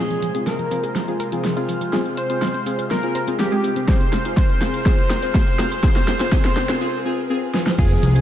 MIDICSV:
0, 0, Header, 1, 11, 480
1, 0, Start_track
1, 0, Key_signature, -4, "minor"
1, 0, Tempo, 487805
1, 1902, Time_signature, 4, 2, 24, 8
1, 8080, End_track
2, 0, Start_track
2, 0, Title_t, "Synth texture"
2, 0, Program_c, 0, 99
2, 0, Note_on_c, 0, 89, 84
2, 6701, Note_off_c, 0, 89, 0
2, 8080, End_track
3, 0, Start_track
3, 0, Title_t, "Analog synth lead"
3, 0, Program_c, 1, 81
3, 0, Note_on_c, 1, 68, 108
3, 463, Note_on_c, 1, 70, 101
3, 478, Note_off_c, 1, 68, 0
3, 1328, Note_off_c, 1, 70, 0
3, 2139, Note_on_c, 1, 72, 102
3, 2766, Note_off_c, 1, 72, 0
3, 2861, Note_on_c, 1, 70, 93
3, 3294, Note_off_c, 1, 70, 0
3, 3341, Note_on_c, 1, 67, 94
3, 3774, Note_off_c, 1, 67, 0
3, 3820, Note_on_c, 1, 72, 96
3, 4254, Note_off_c, 1, 72, 0
3, 4301, Note_on_c, 1, 72, 93
3, 4763, Note_off_c, 1, 72, 0
3, 4781, Note_on_c, 1, 72, 104
3, 5214, Note_off_c, 1, 72, 0
3, 5260, Note_on_c, 1, 72, 92
3, 5722, Note_off_c, 1, 72, 0
3, 5740, Note_on_c, 1, 72, 103
3, 6174, Note_off_c, 1, 72, 0
3, 6221, Note_on_c, 1, 72, 99
3, 6654, Note_off_c, 1, 72, 0
3, 7662, Note_on_c, 1, 68, 107
3, 8080, Note_off_c, 1, 68, 0
3, 8080, End_track
4, 0, Start_track
4, 0, Title_t, "Synth bell"
4, 0, Program_c, 2, 98
4, 0, Note_on_c, 2, 68, 90
4, 459, Note_on_c, 2, 70, 89
4, 461, Note_off_c, 2, 68, 0
4, 1326, Note_off_c, 2, 70, 0
4, 2139, Note_on_c, 2, 72, 86
4, 2766, Note_off_c, 2, 72, 0
4, 2860, Note_on_c, 2, 70, 92
4, 3294, Note_off_c, 2, 70, 0
4, 3340, Note_on_c, 2, 67, 85
4, 3774, Note_off_c, 2, 67, 0
4, 3820, Note_on_c, 2, 72, 85
4, 4254, Note_off_c, 2, 72, 0
4, 4301, Note_on_c, 2, 72, 86
4, 4762, Note_off_c, 2, 72, 0
4, 4782, Note_on_c, 2, 72, 95
4, 5215, Note_off_c, 2, 72, 0
4, 5263, Note_on_c, 2, 72, 90
4, 5724, Note_off_c, 2, 72, 0
4, 5741, Note_on_c, 2, 72, 94
4, 6174, Note_off_c, 2, 72, 0
4, 6221, Note_on_c, 2, 72, 104
4, 6654, Note_off_c, 2, 72, 0
4, 7661, Note_on_c, 2, 68, 101
4, 8080, Note_off_c, 2, 68, 0
4, 8080, End_track
5, 0, Start_track
5, 0, Title_t, "Synth stab"
5, 0, Program_c, 3, 62
5, 0, Note_on_c, 3, 60, 88
5, 0, Note_on_c, 3, 65, 82
5, 0, Note_on_c, 3, 68, 99
5, 100, Note_off_c, 3, 60, 0
5, 100, Note_off_c, 3, 65, 0
5, 100, Note_off_c, 3, 68, 0
5, 342, Note_on_c, 3, 60, 79
5, 342, Note_on_c, 3, 65, 69
5, 342, Note_on_c, 3, 68, 88
5, 672, Note_off_c, 3, 60, 0
5, 672, Note_off_c, 3, 65, 0
5, 673, Note_off_c, 3, 68, 0
5, 699, Note_on_c, 3, 60, 85
5, 700, Note_on_c, 3, 65, 81
5, 700, Note_on_c, 3, 68, 97
5, 819, Note_off_c, 3, 60, 0
5, 819, Note_off_c, 3, 68, 0
5, 820, Note_off_c, 3, 65, 0
5, 1061, Note_on_c, 3, 65, 82
5, 1061, Note_on_c, 3, 68, 104
5, 1062, Note_on_c, 3, 60, 87
5, 1177, Note_off_c, 3, 65, 0
5, 1178, Note_off_c, 3, 60, 0
5, 1178, Note_off_c, 3, 68, 0
5, 1303, Note_on_c, 3, 60, 90
5, 1303, Note_on_c, 3, 65, 81
5, 1303, Note_on_c, 3, 68, 103
5, 1514, Note_off_c, 3, 60, 0
5, 1514, Note_off_c, 3, 65, 0
5, 1514, Note_off_c, 3, 68, 0
5, 1542, Note_on_c, 3, 60, 90
5, 1542, Note_on_c, 3, 68, 100
5, 1543, Note_on_c, 3, 65, 81
5, 1873, Note_off_c, 3, 60, 0
5, 1873, Note_off_c, 3, 65, 0
5, 1873, Note_off_c, 3, 68, 0
5, 1900, Note_on_c, 3, 60, 94
5, 1901, Note_on_c, 3, 65, 85
5, 1901, Note_on_c, 3, 68, 101
5, 2020, Note_off_c, 3, 60, 0
5, 2020, Note_off_c, 3, 65, 0
5, 2020, Note_off_c, 3, 68, 0
5, 2262, Note_on_c, 3, 60, 81
5, 2263, Note_on_c, 3, 65, 76
5, 2263, Note_on_c, 3, 68, 89
5, 2593, Note_off_c, 3, 60, 0
5, 2593, Note_off_c, 3, 65, 0
5, 2593, Note_off_c, 3, 68, 0
5, 2620, Note_on_c, 3, 68, 97
5, 2621, Note_on_c, 3, 60, 87
5, 2621, Note_on_c, 3, 65, 76
5, 2740, Note_off_c, 3, 60, 0
5, 2740, Note_off_c, 3, 65, 0
5, 2740, Note_off_c, 3, 68, 0
5, 2982, Note_on_c, 3, 60, 88
5, 2982, Note_on_c, 3, 65, 84
5, 2982, Note_on_c, 3, 68, 102
5, 3098, Note_off_c, 3, 60, 0
5, 3098, Note_off_c, 3, 65, 0
5, 3098, Note_off_c, 3, 68, 0
5, 3222, Note_on_c, 3, 60, 93
5, 3223, Note_on_c, 3, 65, 87
5, 3223, Note_on_c, 3, 68, 100
5, 3434, Note_off_c, 3, 60, 0
5, 3434, Note_off_c, 3, 65, 0
5, 3434, Note_off_c, 3, 68, 0
5, 3464, Note_on_c, 3, 56, 100
5, 3464, Note_on_c, 3, 60, 92
5, 3464, Note_on_c, 3, 65, 86
5, 3793, Note_off_c, 3, 56, 0
5, 3793, Note_off_c, 3, 65, 0
5, 3794, Note_off_c, 3, 60, 0
5, 3821, Note_on_c, 3, 65, 77
5, 3821, Note_on_c, 3, 68, 94
5, 3822, Note_on_c, 3, 60, 87
5, 3940, Note_off_c, 3, 65, 0
5, 3940, Note_off_c, 3, 68, 0
5, 3941, Note_off_c, 3, 60, 0
5, 4183, Note_on_c, 3, 60, 73
5, 4183, Note_on_c, 3, 65, 67
5, 4184, Note_on_c, 3, 68, 84
5, 4513, Note_off_c, 3, 60, 0
5, 4513, Note_off_c, 3, 65, 0
5, 4513, Note_off_c, 3, 68, 0
5, 4542, Note_on_c, 3, 60, 81
5, 4542, Note_on_c, 3, 65, 75
5, 4542, Note_on_c, 3, 68, 88
5, 4661, Note_off_c, 3, 60, 0
5, 4661, Note_off_c, 3, 65, 0
5, 4661, Note_off_c, 3, 68, 0
5, 4782, Note_on_c, 3, 65, 80
5, 4782, Note_on_c, 3, 68, 99
5, 4783, Note_on_c, 3, 60, 89
5, 4901, Note_off_c, 3, 60, 0
5, 4901, Note_off_c, 3, 65, 0
5, 4901, Note_off_c, 3, 68, 0
5, 5145, Note_on_c, 3, 60, 75
5, 5145, Note_on_c, 3, 65, 70
5, 5145, Note_on_c, 3, 68, 83
5, 5474, Note_off_c, 3, 60, 0
5, 5474, Note_off_c, 3, 65, 0
5, 5474, Note_off_c, 3, 68, 0
5, 5502, Note_on_c, 3, 60, 78
5, 5502, Note_on_c, 3, 65, 74
5, 5502, Note_on_c, 3, 68, 85
5, 5621, Note_off_c, 3, 60, 0
5, 5621, Note_off_c, 3, 65, 0
5, 5621, Note_off_c, 3, 68, 0
5, 5741, Note_on_c, 3, 60, 91
5, 5741, Note_on_c, 3, 65, 88
5, 5741, Note_on_c, 3, 68, 101
5, 5860, Note_off_c, 3, 65, 0
5, 5860, Note_off_c, 3, 68, 0
5, 5861, Note_off_c, 3, 60, 0
5, 6103, Note_on_c, 3, 60, 80
5, 6103, Note_on_c, 3, 65, 75
5, 6103, Note_on_c, 3, 68, 83
5, 6202, Note_off_c, 3, 60, 0
5, 6203, Note_off_c, 3, 65, 0
5, 6203, Note_off_c, 3, 68, 0
5, 6221, Note_on_c, 3, 60, 102
5, 6221, Note_on_c, 3, 65, 91
5, 6221, Note_on_c, 3, 68, 106
5, 6340, Note_off_c, 3, 60, 0
5, 6340, Note_off_c, 3, 65, 0
5, 6340, Note_off_c, 3, 68, 0
5, 6582, Note_on_c, 3, 68, 85
5, 6583, Note_on_c, 3, 60, 78
5, 6583, Note_on_c, 3, 65, 71
5, 6682, Note_off_c, 3, 60, 0
5, 6682, Note_off_c, 3, 68, 0
5, 6683, Note_off_c, 3, 65, 0
5, 6700, Note_on_c, 3, 60, 100
5, 6701, Note_on_c, 3, 65, 92
5, 6701, Note_on_c, 3, 68, 107
5, 6820, Note_off_c, 3, 60, 0
5, 6820, Note_off_c, 3, 65, 0
5, 6820, Note_off_c, 3, 68, 0
5, 6940, Note_on_c, 3, 65, 92
5, 6941, Note_on_c, 3, 60, 99
5, 6941, Note_on_c, 3, 68, 115
5, 7060, Note_off_c, 3, 60, 0
5, 7060, Note_off_c, 3, 65, 0
5, 7060, Note_off_c, 3, 68, 0
5, 7182, Note_on_c, 3, 60, 102
5, 7182, Note_on_c, 3, 65, 91
5, 7183, Note_on_c, 3, 68, 114
5, 7301, Note_off_c, 3, 60, 0
5, 7301, Note_off_c, 3, 65, 0
5, 7301, Note_off_c, 3, 68, 0
5, 7422, Note_on_c, 3, 60, 95
5, 7422, Note_on_c, 3, 65, 88
5, 7422, Note_on_c, 3, 68, 104
5, 7541, Note_off_c, 3, 60, 0
5, 7541, Note_off_c, 3, 65, 0
5, 7541, Note_off_c, 3, 68, 0
5, 7661, Note_on_c, 3, 68, 105
5, 7662, Note_on_c, 3, 60, 97
5, 7662, Note_on_c, 3, 65, 87
5, 7780, Note_off_c, 3, 68, 0
5, 7781, Note_off_c, 3, 60, 0
5, 7781, Note_off_c, 3, 65, 0
5, 8024, Note_on_c, 3, 68, 85
5, 8025, Note_on_c, 3, 60, 78
5, 8025, Note_on_c, 3, 65, 73
5, 8080, Note_off_c, 3, 60, 0
5, 8080, Note_off_c, 3, 65, 0
5, 8080, Note_off_c, 3, 68, 0
5, 8080, End_track
6, 0, Start_track
6, 0, Title_t, "Synth pluck"
6, 0, Program_c, 4, 84
6, 102, Note_on_c, 4, 53, 60
6, 189, Note_off_c, 4, 53, 0
6, 220, Note_on_c, 4, 53, 62
6, 310, Note_off_c, 4, 53, 0
6, 342, Note_on_c, 4, 68, 90
6, 429, Note_off_c, 4, 68, 0
6, 460, Note_on_c, 4, 53, 65
6, 549, Note_off_c, 4, 53, 0
6, 582, Note_on_c, 4, 53, 64
6, 668, Note_off_c, 4, 53, 0
6, 699, Note_on_c, 4, 53, 62
6, 789, Note_off_c, 4, 53, 0
6, 821, Note_on_c, 4, 68, 91
6, 908, Note_off_c, 4, 68, 0
6, 939, Note_on_c, 4, 53, 67
6, 1029, Note_off_c, 4, 53, 0
6, 1061, Note_on_c, 4, 53, 65
6, 1148, Note_off_c, 4, 53, 0
6, 1179, Note_on_c, 4, 70, 96
6, 1269, Note_off_c, 4, 70, 0
6, 1301, Note_on_c, 4, 53, 67
6, 1388, Note_off_c, 4, 53, 0
6, 1419, Note_on_c, 4, 53, 62
6, 1509, Note_off_c, 4, 53, 0
6, 1542, Note_on_c, 4, 65, 96
6, 1628, Note_off_c, 4, 65, 0
6, 1660, Note_on_c, 4, 53, 64
6, 1749, Note_off_c, 4, 53, 0
6, 1781, Note_on_c, 4, 53, 61
6, 1868, Note_off_c, 4, 53, 0
6, 1900, Note_on_c, 4, 68, 91
6, 1989, Note_off_c, 4, 68, 0
6, 2021, Note_on_c, 4, 60, 65
6, 2108, Note_off_c, 4, 60, 0
6, 2139, Note_on_c, 4, 60, 67
6, 2229, Note_off_c, 4, 60, 0
6, 2261, Note_on_c, 4, 72, 90
6, 2348, Note_off_c, 4, 72, 0
6, 2380, Note_on_c, 4, 60, 61
6, 2469, Note_off_c, 4, 60, 0
6, 2502, Note_on_c, 4, 60, 62
6, 2588, Note_off_c, 4, 60, 0
6, 2620, Note_on_c, 4, 60, 60
6, 2709, Note_off_c, 4, 60, 0
6, 2742, Note_on_c, 4, 72, 91
6, 2829, Note_off_c, 4, 72, 0
6, 2860, Note_on_c, 4, 60, 65
6, 2950, Note_off_c, 4, 60, 0
6, 2982, Note_on_c, 4, 60, 67
6, 3069, Note_off_c, 4, 60, 0
6, 3101, Note_on_c, 4, 72, 96
6, 3190, Note_off_c, 4, 72, 0
6, 3223, Note_on_c, 4, 60, 67
6, 3309, Note_off_c, 4, 60, 0
6, 3341, Note_on_c, 4, 60, 63
6, 3430, Note_off_c, 4, 60, 0
6, 3462, Note_on_c, 4, 68, 96
6, 3549, Note_off_c, 4, 68, 0
6, 3580, Note_on_c, 4, 60, 63
6, 3670, Note_off_c, 4, 60, 0
6, 3703, Note_on_c, 4, 60, 66
6, 3789, Note_off_c, 4, 60, 0
6, 3821, Note_on_c, 4, 68, 90
6, 3910, Note_off_c, 4, 68, 0
6, 3943, Note_on_c, 4, 60, 57
6, 4029, Note_off_c, 4, 60, 0
6, 4062, Note_on_c, 4, 60, 61
6, 4151, Note_off_c, 4, 60, 0
6, 4184, Note_on_c, 4, 72, 83
6, 4270, Note_off_c, 4, 72, 0
6, 4303, Note_on_c, 4, 60, 60
6, 4391, Note_off_c, 4, 60, 0
6, 4424, Note_on_c, 4, 60, 62
6, 4510, Note_off_c, 4, 60, 0
6, 4542, Note_on_c, 4, 60, 57
6, 4631, Note_off_c, 4, 60, 0
6, 4664, Note_on_c, 4, 72, 80
6, 4750, Note_off_c, 4, 72, 0
6, 4781, Note_on_c, 4, 68, 97
6, 4870, Note_off_c, 4, 68, 0
6, 4905, Note_on_c, 4, 60, 64
6, 4990, Note_off_c, 4, 60, 0
6, 5022, Note_on_c, 4, 60, 61
6, 5111, Note_off_c, 4, 60, 0
6, 5144, Note_on_c, 4, 72, 94
6, 5230, Note_off_c, 4, 72, 0
6, 5384, Note_on_c, 4, 60, 63
6, 5470, Note_off_c, 4, 60, 0
6, 5503, Note_on_c, 4, 60, 63
6, 5591, Note_off_c, 4, 60, 0
6, 5625, Note_on_c, 4, 72, 89
6, 5710, Note_off_c, 4, 72, 0
6, 5742, Note_on_c, 4, 68, 96
6, 5831, Note_off_c, 4, 68, 0
6, 5865, Note_on_c, 4, 60, 64
6, 5950, Note_off_c, 4, 60, 0
6, 5983, Note_on_c, 4, 60, 66
6, 6071, Note_off_c, 4, 60, 0
6, 6104, Note_on_c, 4, 72, 93
6, 6189, Note_off_c, 4, 72, 0
6, 6222, Note_on_c, 4, 68, 97
6, 6310, Note_off_c, 4, 68, 0
6, 6344, Note_on_c, 4, 60, 65
6, 6430, Note_off_c, 4, 60, 0
6, 6462, Note_on_c, 4, 60, 64
6, 6550, Note_off_c, 4, 60, 0
6, 6583, Note_on_c, 4, 72, 92
6, 6669, Note_off_c, 4, 72, 0
6, 7661, Note_on_c, 4, 65, 98
6, 7750, Note_off_c, 4, 65, 0
6, 7783, Note_on_c, 4, 53, 65
6, 7869, Note_off_c, 4, 53, 0
6, 7902, Note_on_c, 4, 53, 65
6, 7990, Note_off_c, 4, 53, 0
6, 8023, Note_on_c, 4, 68, 97
6, 8080, Note_off_c, 4, 68, 0
6, 8080, End_track
7, 0, Start_track
7, 0, Title_t, "Supersaw synth"
7, 0, Program_c, 5, 81
7, 0, Note_on_c, 5, 48, 77
7, 0, Note_on_c, 5, 56, 68
7, 0, Note_on_c, 5, 65, 70
7, 0, Note_on_c, 5, 72, 83
7, 3782, Note_off_c, 5, 72, 0
7, 3821, Note_on_c, 5, 70, 83
7, 6661, Note_off_c, 5, 48, 0
7, 6661, Note_off_c, 5, 56, 0
7, 6661, Note_off_c, 5, 65, 0
7, 6673, Note_off_c, 5, 70, 0
7, 7663, Note_on_c, 5, 65, 84
7, 7664, Note_on_c, 5, 48, 74
7, 7664, Note_on_c, 5, 53, 71
7, 7664, Note_on_c, 5, 56, 72
7, 8080, Note_off_c, 5, 48, 0
7, 8080, Note_off_c, 5, 53, 0
7, 8080, Note_off_c, 5, 56, 0
7, 8080, Note_off_c, 5, 65, 0
7, 8080, End_track
8, 0, Start_track
8, 0, Title_t, "Analog synth bass"
8, 0, Program_c, 6, 38
8, 7661, Note_on_c, 6, 29, 100
8, 7843, Note_off_c, 6, 29, 0
8, 7902, Note_on_c, 6, 36, 109
8, 8080, Note_off_c, 6, 36, 0
8, 8080, End_track
9, 0, Start_track
9, 0, Title_t, "Downlifter"
9, 0, Program_c, 7, 103
9, 7662, Note_on_c, 7, 60, 70
9, 8080, Note_off_c, 7, 60, 0
9, 8080, End_track
10, 0, Start_track
10, 0, Title_t, "Riser"
10, 0, Program_c, 8, 103
10, 0, Note_on_c, 8, 60, 73
10, 7662, Note_off_c, 8, 60, 0
10, 8080, End_track
11, 0, Start_track
11, 0, Title_t, "Drums"
11, 103, Note_on_c, 9, 42, 26
11, 202, Note_off_c, 9, 42, 0
11, 221, Note_on_c, 9, 46, 101
11, 319, Note_off_c, 9, 46, 0
11, 342, Note_on_c, 9, 42, 57
11, 441, Note_off_c, 9, 42, 0
11, 461, Note_on_c, 9, 38, 46
11, 461, Note_on_c, 9, 42, 54
11, 560, Note_off_c, 9, 38, 0
11, 560, Note_off_c, 9, 42, 0
11, 582, Note_on_c, 9, 42, 25
11, 681, Note_off_c, 9, 42, 0
11, 701, Note_on_c, 9, 46, 87
11, 799, Note_off_c, 9, 46, 0
11, 822, Note_on_c, 9, 42, 53
11, 921, Note_off_c, 9, 42, 0
11, 940, Note_on_c, 9, 38, 49
11, 940, Note_on_c, 9, 42, 51
11, 1039, Note_off_c, 9, 38, 0
11, 1039, Note_off_c, 9, 42, 0
11, 1063, Note_on_c, 9, 42, 27
11, 1161, Note_off_c, 9, 42, 0
11, 1180, Note_on_c, 9, 46, 107
11, 1279, Note_off_c, 9, 46, 0
11, 1302, Note_on_c, 9, 42, 55
11, 1400, Note_off_c, 9, 42, 0
11, 1420, Note_on_c, 9, 38, 54
11, 1420, Note_on_c, 9, 42, 49
11, 1519, Note_off_c, 9, 38, 0
11, 1519, Note_off_c, 9, 42, 0
11, 1543, Note_on_c, 9, 42, 27
11, 1641, Note_off_c, 9, 42, 0
11, 1660, Note_on_c, 9, 46, 91
11, 1758, Note_off_c, 9, 46, 0
11, 1783, Note_on_c, 9, 42, 54
11, 1881, Note_off_c, 9, 42, 0
11, 1900, Note_on_c, 9, 38, 59
11, 1900, Note_on_c, 9, 42, 54
11, 1998, Note_off_c, 9, 38, 0
11, 1998, Note_off_c, 9, 42, 0
11, 2021, Note_on_c, 9, 42, 26
11, 2119, Note_off_c, 9, 42, 0
11, 2139, Note_on_c, 9, 46, 106
11, 2237, Note_off_c, 9, 46, 0
11, 2262, Note_on_c, 9, 42, 52
11, 2360, Note_off_c, 9, 42, 0
11, 2380, Note_on_c, 9, 38, 61
11, 2380, Note_on_c, 9, 42, 54
11, 2479, Note_off_c, 9, 38, 0
11, 2479, Note_off_c, 9, 42, 0
11, 2503, Note_on_c, 9, 42, 24
11, 2601, Note_off_c, 9, 42, 0
11, 2620, Note_on_c, 9, 46, 94
11, 2719, Note_off_c, 9, 46, 0
11, 2743, Note_on_c, 9, 42, 51
11, 2841, Note_off_c, 9, 42, 0
11, 2861, Note_on_c, 9, 38, 64
11, 2861, Note_on_c, 9, 42, 52
11, 2959, Note_off_c, 9, 38, 0
11, 2959, Note_off_c, 9, 42, 0
11, 2983, Note_on_c, 9, 42, 25
11, 3081, Note_off_c, 9, 42, 0
11, 3100, Note_on_c, 9, 46, 109
11, 3199, Note_off_c, 9, 46, 0
11, 3222, Note_on_c, 9, 42, 56
11, 3321, Note_off_c, 9, 42, 0
11, 3340, Note_on_c, 9, 38, 69
11, 3340, Note_on_c, 9, 42, 53
11, 3438, Note_off_c, 9, 38, 0
11, 3438, Note_off_c, 9, 42, 0
11, 3462, Note_on_c, 9, 42, 26
11, 3561, Note_off_c, 9, 42, 0
11, 3581, Note_on_c, 9, 46, 99
11, 3679, Note_off_c, 9, 46, 0
11, 3703, Note_on_c, 9, 42, 54
11, 3801, Note_off_c, 9, 42, 0
11, 3820, Note_on_c, 9, 36, 115
11, 3821, Note_on_c, 9, 38, 78
11, 3821, Note_on_c, 9, 42, 52
11, 3919, Note_off_c, 9, 36, 0
11, 3919, Note_off_c, 9, 38, 0
11, 3919, Note_off_c, 9, 42, 0
11, 3944, Note_on_c, 9, 42, 25
11, 4042, Note_off_c, 9, 42, 0
11, 4061, Note_on_c, 9, 38, 72
11, 4061, Note_on_c, 9, 46, 109
11, 4159, Note_off_c, 9, 38, 0
11, 4159, Note_off_c, 9, 46, 0
11, 4182, Note_on_c, 9, 42, 53
11, 4281, Note_off_c, 9, 42, 0
11, 4300, Note_on_c, 9, 36, 109
11, 4300, Note_on_c, 9, 38, 75
11, 4300, Note_on_c, 9, 42, 51
11, 4399, Note_off_c, 9, 36, 0
11, 4399, Note_off_c, 9, 38, 0
11, 4399, Note_off_c, 9, 42, 0
11, 4423, Note_on_c, 9, 42, 25
11, 4521, Note_off_c, 9, 42, 0
11, 4541, Note_on_c, 9, 38, 79
11, 4541, Note_on_c, 9, 46, 91
11, 4639, Note_off_c, 9, 38, 0
11, 4639, Note_off_c, 9, 46, 0
11, 4664, Note_on_c, 9, 42, 53
11, 4762, Note_off_c, 9, 42, 0
11, 4781, Note_on_c, 9, 36, 122
11, 4781, Note_on_c, 9, 38, 87
11, 4781, Note_on_c, 9, 42, 51
11, 4879, Note_off_c, 9, 36, 0
11, 4879, Note_off_c, 9, 38, 0
11, 4879, Note_off_c, 9, 42, 0
11, 4903, Note_on_c, 9, 42, 26
11, 5002, Note_off_c, 9, 42, 0
11, 5021, Note_on_c, 9, 38, 82
11, 5021, Note_on_c, 9, 46, 111
11, 5119, Note_off_c, 9, 38, 0
11, 5119, Note_off_c, 9, 46, 0
11, 5142, Note_on_c, 9, 42, 49
11, 5241, Note_off_c, 9, 42, 0
11, 5260, Note_on_c, 9, 36, 109
11, 5261, Note_on_c, 9, 38, 85
11, 5261, Note_on_c, 9, 42, 52
11, 5359, Note_off_c, 9, 36, 0
11, 5360, Note_off_c, 9, 38, 0
11, 5360, Note_off_c, 9, 42, 0
11, 5384, Note_on_c, 9, 42, 26
11, 5482, Note_off_c, 9, 42, 0
11, 5501, Note_on_c, 9, 38, 96
11, 5501, Note_on_c, 9, 46, 98
11, 5600, Note_off_c, 9, 38, 0
11, 5600, Note_off_c, 9, 46, 0
11, 5623, Note_on_c, 9, 42, 51
11, 5722, Note_off_c, 9, 42, 0
11, 5740, Note_on_c, 9, 36, 121
11, 5741, Note_on_c, 9, 38, 96
11, 5741, Note_on_c, 9, 42, 55
11, 5839, Note_off_c, 9, 36, 0
11, 5840, Note_off_c, 9, 38, 0
11, 5840, Note_off_c, 9, 42, 0
11, 5863, Note_on_c, 9, 38, 80
11, 5863, Note_on_c, 9, 42, 26
11, 5962, Note_off_c, 9, 38, 0
11, 5962, Note_off_c, 9, 42, 0
11, 5981, Note_on_c, 9, 38, 94
11, 5981, Note_on_c, 9, 46, 110
11, 6079, Note_off_c, 9, 38, 0
11, 6079, Note_off_c, 9, 46, 0
11, 6102, Note_on_c, 9, 38, 89
11, 6102, Note_on_c, 9, 42, 50
11, 6201, Note_off_c, 9, 38, 0
11, 6201, Note_off_c, 9, 42, 0
11, 6220, Note_on_c, 9, 36, 113
11, 6221, Note_on_c, 9, 38, 93
11, 6221, Note_on_c, 9, 42, 51
11, 6319, Note_off_c, 9, 36, 0
11, 6319, Note_off_c, 9, 38, 0
11, 6319, Note_off_c, 9, 42, 0
11, 6343, Note_on_c, 9, 38, 85
11, 6343, Note_on_c, 9, 42, 25
11, 6441, Note_off_c, 9, 38, 0
11, 6441, Note_off_c, 9, 42, 0
11, 6461, Note_on_c, 9, 38, 95
11, 6461, Note_on_c, 9, 46, 90
11, 6560, Note_off_c, 9, 38, 0
11, 6560, Note_off_c, 9, 46, 0
11, 6583, Note_on_c, 9, 38, 90
11, 6583, Note_on_c, 9, 42, 51
11, 6682, Note_off_c, 9, 38, 0
11, 6682, Note_off_c, 9, 42, 0
11, 7422, Note_on_c, 9, 38, 65
11, 7521, Note_off_c, 9, 38, 0
11, 7543, Note_on_c, 9, 38, 76
11, 7641, Note_off_c, 9, 38, 0
11, 7661, Note_on_c, 9, 36, 112
11, 7662, Note_on_c, 9, 42, 58
11, 7662, Note_on_c, 9, 49, 110
11, 7759, Note_off_c, 9, 36, 0
11, 7761, Note_off_c, 9, 42, 0
11, 7761, Note_off_c, 9, 49, 0
11, 7784, Note_on_c, 9, 42, 28
11, 7882, Note_off_c, 9, 42, 0
11, 7902, Note_on_c, 9, 46, 103
11, 8000, Note_off_c, 9, 46, 0
11, 8024, Note_on_c, 9, 42, 60
11, 8080, Note_off_c, 9, 42, 0
11, 8080, End_track
0, 0, End_of_file